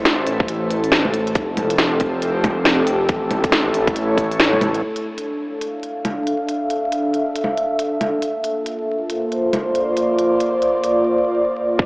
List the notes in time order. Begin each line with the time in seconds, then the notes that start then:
Already playing: A1 A3 E4 A4 C5
0.05 snare, closed hi-hat
0.27 open hi-hat
0.40 kick
0.48 closed hi-hat
0.71 open hi-hat
0.84 open hi-hat
0.92 snare, closed hi-hat
1.05 low bongo
1.14 open hi-hat
1.27 closed hi-hat
1.35 F1 F3, kick, closed hi-hat
1.57 open hi-hat, low bongo
1.61 G4
1.67 C4, closed hi-hat
1.78 snare, closed hi-hat
2.00 kick, open hi-hat
2.22 closed hi-hat
2.44 kick, open hi-hat, low bongo
2.65 snare, closed hi-hat
2.87 open hi-hat
3.09 A1 A3, kick, closed hi-hat
3.31 open hi-hat, low bongo
3.44 E4, kick, closed hi-hat
3.52 snare, closed hi-hat
3.74 C#5, open hi-hat
3.87 kick, closed hi-hat
3.96 closed hi-hat
4.18 kick, open hi-hat
4.32 open hi-hat
4.40 snare, closed hi-hat
4.53 low bongo
4.61 open hi-hat, low bongo
4.75 closed hi-hat
4.82 D4
4.96 closed hi-hat
5.18 F5, closed hi-hat
5.29 E5
5.61 closed hi-hat
5.83 closed hi-hat
6.05 closed hi-hat, low bongo
6.27 closed hi-hat
6.49 closed hi-hat
6.70 closed hi-hat
6.92 closed hi-hat
7.14 closed hi-hat
7.36 closed hi-hat
7.44 low bongo
7.57 closed hi-hat
7.79 closed hi-hat
8.01 closed hi-hat, low bongo
8.22 closed hi-hat
8.31 A#3
8.44 closed hi-hat
8.51 F4
8.66 closed hi-hat
9.08 C5, closed hi-hat
9.32 closed hi-hat
9.53 closed hi-hat, low bongo
9.60 D5
9.75 closed hi-hat
9.97 closed hi-hat
10.19 closed hi-hat
10.40 closed hi-hat
10.62 closed hi-hat
10.84 closed hi-hat
11.79 D1 D4, kick